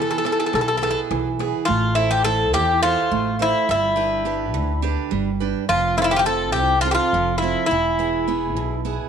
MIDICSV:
0, 0, Header, 1, 5, 480
1, 0, Start_track
1, 0, Key_signature, 0, "minor"
1, 0, Tempo, 573614
1, 1407, Time_signature, 7, 3, 24, 8
1, 7605, End_track
2, 0, Start_track
2, 0, Title_t, "Bouzouki"
2, 0, Program_c, 0, 25
2, 14, Note_on_c, 0, 69, 47
2, 78, Note_off_c, 0, 69, 0
2, 88, Note_on_c, 0, 69, 57
2, 141, Note_off_c, 0, 69, 0
2, 151, Note_on_c, 0, 69, 51
2, 210, Note_off_c, 0, 69, 0
2, 220, Note_on_c, 0, 69, 52
2, 261, Note_off_c, 0, 69, 0
2, 271, Note_on_c, 0, 69, 46
2, 322, Note_off_c, 0, 69, 0
2, 332, Note_on_c, 0, 69, 54
2, 378, Note_off_c, 0, 69, 0
2, 388, Note_on_c, 0, 69, 45
2, 451, Note_off_c, 0, 69, 0
2, 461, Note_on_c, 0, 69, 54
2, 502, Note_off_c, 0, 69, 0
2, 512, Note_on_c, 0, 69, 46
2, 559, Note_off_c, 0, 69, 0
2, 569, Note_on_c, 0, 69, 58
2, 638, Note_off_c, 0, 69, 0
2, 648, Note_on_c, 0, 69, 50
2, 685, Note_off_c, 0, 69, 0
2, 695, Note_on_c, 0, 69, 57
2, 748, Note_off_c, 0, 69, 0
2, 758, Note_on_c, 0, 69, 56
2, 830, Note_off_c, 0, 69, 0
2, 1383, Note_on_c, 0, 65, 77
2, 1618, Note_off_c, 0, 65, 0
2, 1632, Note_on_c, 0, 64, 75
2, 1751, Note_off_c, 0, 64, 0
2, 1762, Note_on_c, 0, 67, 84
2, 1874, Note_off_c, 0, 67, 0
2, 1878, Note_on_c, 0, 69, 86
2, 2120, Note_off_c, 0, 69, 0
2, 2124, Note_on_c, 0, 67, 84
2, 2349, Note_off_c, 0, 67, 0
2, 2364, Note_on_c, 0, 65, 83
2, 2812, Note_off_c, 0, 65, 0
2, 2863, Note_on_c, 0, 64, 76
2, 3093, Note_off_c, 0, 64, 0
2, 3103, Note_on_c, 0, 64, 71
2, 4022, Note_off_c, 0, 64, 0
2, 4761, Note_on_c, 0, 65, 84
2, 4987, Note_off_c, 0, 65, 0
2, 5002, Note_on_c, 0, 64, 78
2, 5033, Note_off_c, 0, 64, 0
2, 5037, Note_on_c, 0, 65, 66
2, 5056, Note_on_c, 0, 64, 78
2, 5067, Note_off_c, 0, 65, 0
2, 5115, Note_on_c, 0, 67, 85
2, 5124, Note_off_c, 0, 64, 0
2, 5149, Note_off_c, 0, 67, 0
2, 5158, Note_on_c, 0, 65, 77
2, 5181, Note_on_c, 0, 67, 86
2, 5188, Note_off_c, 0, 65, 0
2, 5235, Note_off_c, 0, 67, 0
2, 5239, Note_on_c, 0, 69, 92
2, 5456, Note_off_c, 0, 69, 0
2, 5459, Note_on_c, 0, 67, 86
2, 5696, Note_off_c, 0, 67, 0
2, 5699, Note_on_c, 0, 65, 83
2, 5766, Note_off_c, 0, 65, 0
2, 5784, Note_on_c, 0, 67, 71
2, 5809, Note_off_c, 0, 67, 0
2, 5812, Note_on_c, 0, 65, 76
2, 6165, Note_off_c, 0, 65, 0
2, 6174, Note_on_c, 0, 64, 72
2, 6402, Note_off_c, 0, 64, 0
2, 6412, Note_on_c, 0, 64, 69
2, 7356, Note_off_c, 0, 64, 0
2, 7605, End_track
3, 0, Start_track
3, 0, Title_t, "Steel-string acoustic guitar"
3, 0, Program_c, 1, 25
3, 0, Note_on_c, 1, 52, 68
3, 0, Note_on_c, 1, 59, 49
3, 0, Note_on_c, 1, 64, 37
3, 0, Note_on_c, 1, 68, 43
3, 192, Note_off_c, 1, 52, 0
3, 199, Note_off_c, 1, 64, 0
3, 200, Note_off_c, 1, 59, 0
3, 204, Note_off_c, 1, 68, 0
3, 208, Note_on_c, 1, 59, 50
3, 214, Note_on_c, 1, 64, 41
3, 214, Note_on_c, 1, 68, 50
3, 444, Note_on_c, 1, 47, 60
3, 593, Note_off_c, 1, 59, 0
3, 593, Note_off_c, 1, 64, 0
3, 596, Note_off_c, 1, 68, 0
3, 683, Note_on_c, 1, 59, 47
3, 689, Note_on_c, 1, 64, 39
3, 690, Note_on_c, 1, 68, 49
3, 911, Note_off_c, 1, 47, 0
3, 926, Note_on_c, 1, 52, 64
3, 1069, Note_off_c, 1, 59, 0
3, 1070, Note_off_c, 1, 64, 0
3, 1073, Note_off_c, 1, 68, 0
3, 1166, Note_on_c, 1, 59, 43
3, 1173, Note_on_c, 1, 64, 39
3, 1175, Note_on_c, 1, 68, 50
3, 1360, Note_off_c, 1, 59, 0
3, 1361, Note_off_c, 1, 64, 0
3, 1364, Note_off_c, 1, 68, 0
3, 1392, Note_off_c, 1, 52, 0
3, 1402, Note_on_c, 1, 57, 68
3, 1637, Note_on_c, 1, 64, 46
3, 1643, Note_on_c, 1, 69, 42
3, 1649, Note_on_c, 1, 72, 43
3, 1866, Note_off_c, 1, 64, 0
3, 1870, Note_off_c, 1, 57, 0
3, 1871, Note_off_c, 1, 72, 0
3, 1872, Note_off_c, 1, 69, 0
3, 1876, Note_on_c, 1, 64, 46
3, 1880, Note_on_c, 1, 69, 44
3, 1884, Note_on_c, 1, 72, 48
3, 2120, Note_on_c, 1, 52, 60
3, 2265, Note_off_c, 1, 64, 0
3, 2268, Note_off_c, 1, 69, 0
3, 2268, Note_off_c, 1, 72, 0
3, 2365, Note_on_c, 1, 76, 46
3, 2370, Note_on_c, 1, 69, 43
3, 2378, Note_on_c, 1, 72, 41
3, 2589, Note_off_c, 1, 52, 0
3, 2607, Note_on_c, 1, 57, 61
3, 2750, Note_off_c, 1, 76, 0
3, 2754, Note_off_c, 1, 69, 0
3, 2756, Note_off_c, 1, 72, 0
3, 2838, Note_on_c, 1, 64, 45
3, 2840, Note_on_c, 1, 69, 38
3, 2847, Note_on_c, 1, 72, 45
3, 3033, Note_off_c, 1, 64, 0
3, 3037, Note_off_c, 1, 69, 0
3, 3037, Note_off_c, 1, 72, 0
3, 3073, Note_off_c, 1, 57, 0
3, 3087, Note_on_c, 1, 55, 70
3, 3312, Note_on_c, 1, 62, 45
3, 3317, Note_on_c, 1, 67, 42
3, 3323, Note_on_c, 1, 71, 50
3, 3548, Note_off_c, 1, 62, 0
3, 3548, Note_off_c, 1, 67, 0
3, 3553, Note_off_c, 1, 55, 0
3, 3557, Note_off_c, 1, 71, 0
3, 3557, Note_on_c, 1, 62, 44
3, 3561, Note_on_c, 1, 67, 41
3, 3567, Note_on_c, 1, 71, 53
3, 3799, Note_on_c, 1, 50, 65
3, 3946, Note_off_c, 1, 62, 0
3, 3946, Note_off_c, 1, 67, 0
3, 3951, Note_off_c, 1, 71, 0
3, 4037, Note_on_c, 1, 62, 48
3, 4040, Note_on_c, 1, 67, 42
3, 4048, Note_on_c, 1, 71, 49
3, 4269, Note_off_c, 1, 50, 0
3, 4276, Note_on_c, 1, 55, 63
3, 4425, Note_off_c, 1, 62, 0
3, 4427, Note_off_c, 1, 67, 0
3, 4432, Note_off_c, 1, 71, 0
3, 4522, Note_on_c, 1, 71, 51
3, 4526, Note_on_c, 1, 67, 42
3, 4530, Note_on_c, 1, 62, 43
3, 4717, Note_off_c, 1, 62, 0
3, 4717, Note_off_c, 1, 67, 0
3, 4718, Note_off_c, 1, 71, 0
3, 4747, Note_off_c, 1, 55, 0
3, 4763, Note_on_c, 1, 53, 66
3, 4997, Note_on_c, 1, 60, 47
3, 5002, Note_on_c, 1, 65, 41
3, 5004, Note_on_c, 1, 69, 43
3, 5225, Note_off_c, 1, 60, 0
3, 5226, Note_off_c, 1, 65, 0
3, 5231, Note_off_c, 1, 53, 0
3, 5232, Note_off_c, 1, 69, 0
3, 5234, Note_on_c, 1, 60, 43
3, 5240, Note_on_c, 1, 65, 38
3, 5242, Note_on_c, 1, 69, 53
3, 5489, Note_on_c, 1, 48, 60
3, 5624, Note_off_c, 1, 60, 0
3, 5625, Note_off_c, 1, 65, 0
3, 5628, Note_off_c, 1, 69, 0
3, 5732, Note_on_c, 1, 60, 45
3, 5737, Note_on_c, 1, 65, 45
3, 5742, Note_on_c, 1, 69, 54
3, 5954, Note_off_c, 1, 48, 0
3, 5974, Note_on_c, 1, 53, 63
3, 6114, Note_off_c, 1, 60, 0
3, 6118, Note_off_c, 1, 65, 0
3, 6120, Note_off_c, 1, 69, 0
3, 6210, Note_on_c, 1, 60, 44
3, 6214, Note_on_c, 1, 65, 44
3, 6222, Note_on_c, 1, 69, 50
3, 6401, Note_off_c, 1, 60, 0
3, 6405, Note_off_c, 1, 65, 0
3, 6406, Note_off_c, 1, 69, 0
3, 6437, Note_off_c, 1, 53, 0
3, 6452, Note_on_c, 1, 52, 64
3, 6685, Note_on_c, 1, 59, 48
3, 6692, Note_on_c, 1, 64, 40
3, 6697, Note_on_c, 1, 68, 49
3, 6915, Note_off_c, 1, 52, 0
3, 6916, Note_off_c, 1, 59, 0
3, 6919, Note_off_c, 1, 64, 0
3, 6923, Note_off_c, 1, 68, 0
3, 6925, Note_on_c, 1, 59, 43
3, 6933, Note_on_c, 1, 64, 35
3, 6933, Note_on_c, 1, 68, 51
3, 7168, Note_on_c, 1, 47, 58
3, 7311, Note_off_c, 1, 59, 0
3, 7312, Note_off_c, 1, 64, 0
3, 7315, Note_off_c, 1, 68, 0
3, 7404, Note_on_c, 1, 59, 45
3, 7408, Note_on_c, 1, 64, 41
3, 7414, Note_on_c, 1, 68, 44
3, 7605, Note_off_c, 1, 47, 0
3, 7605, Note_off_c, 1, 59, 0
3, 7605, Note_off_c, 1, 64, 0
3, 7605, Note_off_c, 1, 68, 0
3, 7605, End_track
4, 0, Start_track
4, 0, Title_t, "Upright bass"
4, 0, Program_c, 2, 32
4, 451, Note_on_c, 2, 35, 93
4, 786, Note_off_c, 2, 35, 0
4, 925, Note_on_c, 2, 35, 78
4, 1262, Note_off_c, 2, 35, 0
4, 1410, Note_on_c, 2, 33, 93
4, 2128, Note_off_c, 2, 33, 0
4, 2128, Note_on_c, 2, 40, 75
4, 2464, Note_off_c, 2, 40, 0
4, 2607, Note_on_c, 2, 33, 81
4, 2943, Note_off_c, 2, 33, 0
4, 3087, Note_on_c, 2, 31, 89
4, 3805, Note_off_c, 2, 31, 0
4, 3805, Note_on_c, 2, 38, 78
4, 4142, Note_off_c, 2, 38, 0
4, 4285, Note_on_c, 2, 31, 80
4, 4622, Note_off_c, 2, 31, 0
4, 4763, Note_on_c, 2, 29, 84
4, 5483, Note_off_c, 2, 29, 0
4, 5483, Note_on_c, 2, 36, 82
4, 5821, Note_off_c, 2, 36, 0
4, 5964, Note_on_c, 2, 29, 80
4, 6302, Note_off_c, 2, 29, 0
4, 6438, Note_on_c, 2, 28, 87
4, 7166, Note_off_c, 2, 28, 0
4, 7166, Note_on_c, 2, 35, 79
4, 7502, Note_off_c, 2, 35, 0
4, 7605, End_track
5, 0, Start_track
5, 0, Title_t, "Darbuka"
5, 95, Note_on_c, 9, 63, 27
5, 178, Note_off_c, 9, 63, 0
5, 209, Note_on_c, 9, 63, 71
5, 292, Note_off_c, 9, 63, 0
5, 332, Note_on_c, 9, 63, 27
5, 416, Note_off_c, 9, 63, 0
5, 450, Note_on_c, 9, 63, 67
5, 534, Note_off_c, 9, 63, 0
5, 575, Note_on_c, 9, 63, 26
5, 659, Note_off_c, 9, 63, 0
5, 693, Note_on_c, 9, 63, 66
5, 776, Note_off_c, 9, 63, 0
5, 812, Note_on_c, 9, 63, 26
5, 896, Note_off_c, 9, 63, 0
5, 932, Note_on_c, 9, 63, 70
5, 1016, Note_off_c, 9, 63, 0
5, 1050, Note_on_c, 9, 63, 25
5, 1134, Note_off_c, 9, 63, 0
5, 1175, Note_on_c, 9, 63, 67
5, 1258, Note_off_c, 9, 63, 0
5, 1296, Note_on_c, 9, 63, 26
5, 1380, Note_off_c, 9, 63, 0
5, 7605, End_track
0, 0, End_of_file